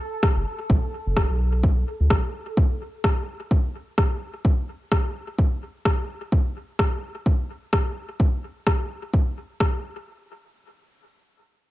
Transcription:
Already playing: synth texture A4
0.23 kick, cross-stick
0.36 sub bass F#1
0.70 sub bass B1, kick
1.06 sub bass F#1
1.17 kick, cross-stick
1.30 sub bass B1
1.63 kick
2.00 sub bass D2
2.10 kick, cross-stick
2.57 kick
3.04 kick, cross-stick
3.51 kick
3.98 kick, cross-stick
4.45 kick
4.92 kick, cross-stick
5.38 kick
5.85 kick, cross-stick
6.32 kick
6.79 kick, cross-stick
7.26 kick
7.73 kick, cross-stick
8.20 kick
8.67 kick, cross-stick
9.13 kick
9.60 kick, cross-stick

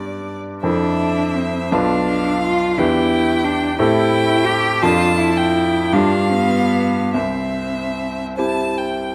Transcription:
Already playing: grand piano G2 G3 D4 D5, violin D5
0.63 grand piano F2 C4 E4 A4, cello D4, violin E5
1.36 cello C4
1.71 grand piano B1 D4 F4 B4, cello D4, violin F5
2.42 cello F4
2.78 grand piano E2 D4 G4 B4, cello E4, violin G5
3.44 cello D4
3.78 grand piano A2 C4 G4 A4, cello E4, violin G5
4.46 cello G4
4.83 grand piano F2 D4 F4 A4, cello F4, violin A5
5.18 cello E4
5.37 violin G5
5.93 grand piano G2 D4 F4 G4, cello D4, violin F5
6.33 cello B3
7.14 grand piano C2, cello C4, violin E5
8.37 grand piano C4 E4 G4, violin A5
8.78 violin G5

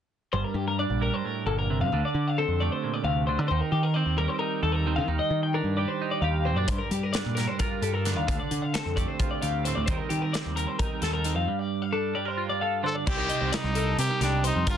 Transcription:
0.33 picked electric bass G1, clean electric guitar G2 C5
0.44 clean electric guitar A#4
0.54 picked electric bass G2, clean electric guitar G4
0.68 clean electric guitar A#4
0.79 clean electric guitar D4 D5
0.90 picked electric bass A#1
1.01 clean electric guitar G3 A#4
1.14 clean electric guitar C5
1.25 clean electric guitar A2 A#4
1.46 picked electric bass G1, clean electric guitar A#2 A4
1.59 clean electric guitar A#4
1.70 clean electric guitar C3
1.81 picked electric bass G2, clean electric guitar F5
1.92 picked electric bass D2, clean electric guitar D3
2.05 clean electric guitar D5
2.14 picked electric bass D3
2.28 clean electric guitar F5
2.38 clean electric guitar C4 A4
2.48 picked electric bass F2
2.60 clean electric guitar A3 G4 D5
2.72 clean electric guitar C5
2.84 clean electric guitar A#2
2.94 clean electric guitar D5
3.04 picked electric bass D2, clean electric guitar C3 F5
3.27 clean electric guitar D3 C5
3.39 picked electric bass D3, clean electric guitar D5
3.48 picked electric bass D#2, clean electric guitar D#3 C5
3.61 clean electric guitar A#4
3.72 picked electric bass D#3, clean electric guitar G4
3.83 clean electric guitar A#4
3.94 clean electric guitar C4 D5
4.06 picked electric bass D#2
4.18 clean electric guitar G3 A#4
4.28 clean electric guitar C5
4.39 clean electric guitar D#4 A#4
4.63 picked electric bass D#2, clean electric guitar A4
4.72 clean electric guitar A#4
4.87 clean electric guitar D#3 C4
4.96 picked electric bass D#3, clean electric guitar F5
5.08 picked electric bass D#2, clean electric guitar D#3
5.19 clean electric guitar D#5
5.30 picked electric bass D#3
5.43 clean electric guitar G5
5.54 clean electric guitar D4 A#4
5.64 picked electric bass G2
5.77 clean electric guitar G3 G4 D5
5.88 clean electric guitar C5
6.02 clean electric guitar D#4
6.11 clean electric guitar D5
6.21 picked electric bass D#2, clean electric guitar G4 F5
6.45 clean electric guitar A#2 C4 C5
6.55 picked electric bass F#2, clean electric guitar D4 D5
6.68 picked electric bass G2, clean electric guitar G2 C5, kick, closed hi-hat
6.78 clean electric guitar A#4
6.91 picked electric bass G3, clean electric guitar G4, closed hi-hat
7.03 clean electric guitar A#4
7.13 clean electric guitar D4 D5, snare, closed hi-hat
7.26 picked electric bass A#2
7.35 clean electric guitar G3 A#4, snare, closed hi-hat
7.48 clean electric guitar C5
7.59 clean electric guitar F4 A#4, kick, closed hi-hat
7.82 picked electric bass G2, clean electric guitar G4 A4, closed hi-hat
7.94 clean electric guitar A4 A#4
8.05 clean electric guitar D3 D4, snare, closed hi-hat
8.17 picked electric bass D#2, clean electric guitar F5
8.27 picked electric bass D2, clean electric guitar D3, kick, closed hi-hat
8.40 clean electric guitar D5
8.51 picked electric bass D3, closed hi-hat
8.62 clean electric guitar F5
8.74 clean electric guitar C4 A4, snare, closed hi-hat
8.86 picked electric bass F2
8.96 clean electric guitar A3 G4 D5, kick, closed hi-hat
9.08 clean electric guitar C5
9.19 clean electric guitar F4, kick, closed hi-hat
9.31 clean electric guitar D5
9.42 picked electric bass D2, clean electric guitar G4 F5, closed hi-hat
9.65 clean electric guitar A2 C4 C5, closed hi-hat
9.75 picked electric bass D2, clean electric guitar D5
9.86 picked electric bass D#2, clean electric guitar D#3 C5, kick, closed hi-hat
9.90 clean electric guitar G3 C4 D#4 A#4
9.98 clean electric guitar A#4
10.09 picked electric bass D#3, clean electric guitar G4, closed hi-hat
10.22 clean electric guitar A#4
10.33 clean electric guitar C4 D5, snare, closed hi-hat
10.46 picked electric bass D#2
10.56 clean electric guitar G3 A#4, closed hi-hat
10.67 clean electric guitar C5
10.79 clean electric guitar D#4 A#4, kick, closed hi-hat
11.02 picked electric bass D#2, clean electric guitar A4, snare, closed hi-hat
11.13 clean electric guitar A#4
11.24 clean electric guitar D#3 C4, closed hi-hat
11.36 picked electric bass F2, clean electric guitar F5
11.48 clean electric guitar G2
11.59 clean electric guitar D5
11.82 clean electric guitar F5
11.93 clean electric guitar D4 A4
12.15 clean electric guitar G3 G4 D5
12.25 clean electric guitar A#4 C5
12.37 clean electric guitar F4
12.50 clean electric guitar D5
12.61 clean electric guitar A4 F5
12.83 clean electric guitar D3 D4 C5, trumpet A4
12.95 clean electric guitar D5
13.07 picked electric bass C2, clean electric guitar C3 C4 D5, trumpet G4, kick, crash
13.17 clean electric guitar D#4 A#4
13.29 clean electric guitar D#4 D#5, closed hi-hat
13.41 picked electric bass C2, clean electric guitar C5
13.52 clean electric guitar G3 D5, trumpet D#4, snare, closed hi-hat
13.64 picked electric bass C2
13.75 clean electric guitar A4 A#4, closed hi-hat
13.98 picked electric bass C3, clean electric guitar C4 A#4, trumpet G4, closed hi-hat
14.11 clean electric guitar D#4
14.21 picked electric bass C2, clean electric guitar G3 G4, trumpet D4, snare, closed hi-hat
14.44 trumpet D#4, clean electric guitar C5, closed hi-hat
14.56 picked electric bass F2
14.67 picked electric bass G1, clean electric guitar G3 A#4, trumpet F4, kick, closed hi-hat

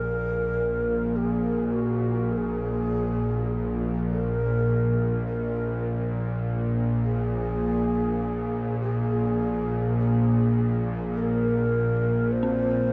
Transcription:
Already playing: synth drone A#1 A#2, shakuhachi A#4
1.16 shakuhachi G#4
1.72 shakuhachi F#4
2.32 shakuhachi A#4
2.37 shakuhachi G#4
4.10 shakuhachi A#4
5.27 shakuhachi A#4
7.03 shakuhachi G#4
8.81 shakuhachi G#4
9.98 shakuhachi G#4
11.14 shakuhachi A#4
12.32 shakuhachi C5
12.43 synth bell C4

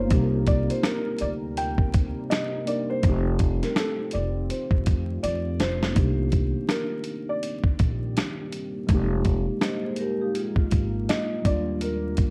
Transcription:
Already playing: tine electric piano A#3 B3 D#4 F4, ambient pad A#4, felt piano C5
0.06 tine electric piano A#3 C4
0.10 upright bass C2, ambient pad C3 G3 C4 G4, tine electric piano D#4 G4, kick, closed hi-hat
0.47 felt piano D5, kick, closed hi-hat
0.70 felt piano C5, closed hi-hat
0.83 felt piano A#4, finger snap, snare, closed hi-hat
1.19 upright bass D2, felt piano D5, closed hi-hat
1.57 felt piano G5, closed hi-hat
1.78 kick
1.94 kick, closed hi-hat
2.30 felt piano D#5, finger snap, snare, closed hi-hat
2.66 tine electric piano A#3 D4 D#4 A#4, felt piano D5, closed hi-hat
2.90 felt piano C5
3.02 upright bass F1, ambient pad D#3 F3 A3 F4, tine electric piano A3 C4, kick, closed hi-hat
3.07 tine electric piano D#4 G4
3.39 kick, closed hi-hat
3.63 felt piano A#4, snare, closed hi-hat
3.76 felt piano A4, finger snap, snare, closed hi-hat
4.11 upright bass F1, felt piano D5, closed hi-hat
4.50 felt piano C5, closed hi-hat
4.71 upright bass F1, kick
4.86 upright bass F2, kick, closed hi-hat
5.23 upright bass F2, felt piano D5, closed hi-hat
5.60 upright bass F1, felt piano C5, snare, closed hi-hat
5.83 snare
5.92 tine electric piano A#3 D4
5.96 upright bass C2, ambient pad D#3 G3 A#3 C4 G4, tine electric piano D#4 G4, kick, closed hi-hat
6.32 kick, closed hi-hat
6.69 felt piano A#4, finger snap, snare, closed hi-hat
7.04 closed hi-hat
7.29 felt piano D5
7.43 closed hi-hat
7.64 kick
7.79 upright bass A#1, kick, closed hi-hat
8.17 finger snap, snare, closed hi-hat
8.53 closed hi-hat
8.87 upright bass F1, ambient pad F3 G#3 D#4 G4, tine electric piano G#3 A#3, kick, closed hi-hat
8.92 tine electric piano D#4 G4
9.25 kick, closed hi-hat
9.61 vibraphone C5 D#5, finger snap, snare, closed hi-hat
9.84 vibraphone G#4 C5
9.96 vibraphone G4 A#4, closed hi-hat
10.21 vibraphone D#4 G4
10.35 vibraphone F4 G#4, closed hi-hat
10.56 vibraphone F4, kick
10.71 upright bass G#1, kick, closed hi-hat
11.09 felt piano D#5, finger snap, snare, closed hi-hat
11.42 upright bass D#2, ambient pad D3 G3 D4 F4, tine electric piano G3 A#3, kick, closed hi-hat
11.46 tine electric piano D4 F4, felt piano D5
11.81 felt piano A#4, closed hi-hat
12.17 kick, closed hi-hat

